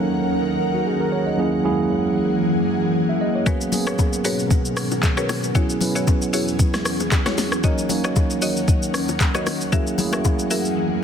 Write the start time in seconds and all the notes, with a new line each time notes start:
Already playing: D#2 D#3 F#3 A#3 C#4 D#4 A4 A#4 F#5
0.74 F#4
0.86 G#4
1.00 A#4
1.12 C#5
1.26 D#5
1.37 F#2 E3 F#3 A#3 C#4 E4 G#4
1.63 F#3 G#3 C#4 E4 G#4
1.70 A#3
3.09 E5
3.21 D#5
3.35 C#5
3.46 G#2 B2 D#3 F#3 A#3 B3 C#4 F#4 G#4 A#4 B4 C#5, kick, low conga, shaker
3.61 shaker
3.72 F#3 A#3 B3 C#4 G#4, open hi-hat, low bongo, low conga, shaker
3.87 F#4 G#4 A#4 B4 C#5, cross-stick, shaker
3.99 kick, high bongo, shaker
4.13 shaker
4.24 F#4 G#4 A#4 B4 C#5, open hi-hat, shaker
4.39 shaker
4.51 kick, low conga, shaker
4.65 shaker
4.77 cross-stick, open hi-hat, shaker
4.91 low bongo, shaker
5.03 kick, clap, high bongo, shaker
5.17 F#4 G#4 A#4 B4 C#5, cross-stick, high bongo, shaker
5.29 cross-stick, open hi-hat, low bongo, shaker
5.44 shaker
5.55 E2 E3 F#3 B3 C#4 E4 F#4 G#4 C#5, kick, low conga, shaker
5.70 shaker
5.81 F#3 B3 C#4 E4 B4, open hi-hat, low bongo, low conga, shaker
5.95 E4 F#4 G#4 C#5, shaker
6.07 kick, high bongo, shaker
6.22 shaker
6.33 E4 F#4 G#4 C#5, open hi-hat, shaker
6.48 shaker
6.59 kick, low conga, shaker
6.74 cross-stick, snare, shaker
6.85 cross-stick, open hi-hat, shaker
7.00 low bongo, shaker
7.12 kick, clap, high bongo, shaker
7.26 E4 F#4 G#4 C#5, cross-stick, snare, high bongo, shaker
7.38 snare, open hi-hat, low bongo, shaker
7.52 cross-stick, shaker
7.63 D#2 D#3 F#3 A#3 C#4 D#4 F#4 A#4 C#5 D#5 F#5, kick, low conga, shaker
7.78 shaker
7.89 F#3 A#3 C#4 D#4 C#5, open hi-hat, low bongo, low conga, shaker
8.04 F#4 C#5 D#5, cross-stick, shaker
8.16 kick, high bongo, shaker
8.30 shaker
8.42 F#4 C#5 D#5, open hi-hat, shaker
8.57 shaker
8.68 kick, low conga, shaker
8.83 shaker
8.94 cross-stick, open hi-hat, shaker
9.09 low bongo, shaker
9.20 kick, clap, high bongo, shaker
9.34 F#4 C#5 D#5, cross-stick, high bongo, shaker
9.47 cross-stick, open hi-hat, low bongo, shaker
9.61 shaker
9.72 F#2 E3 F#3 A#3 C#4 E4 F#4 G#4 A#4 E5, kick, low conga, shaker
9.87 shaker
9.98 F#3 A3 C#4 E4 G#4, open hi-hat, low bongo, low conga, shaker
10.05 A#3
10.13 F#4 G#4 A#4 E5, cross-stick, low bongo, shaker
10.25 kick, high bongo, shaker
10.39 shaker
10.51 F#4 G#4 A#4 E5, open hi-hat, shaker
10.65 shaker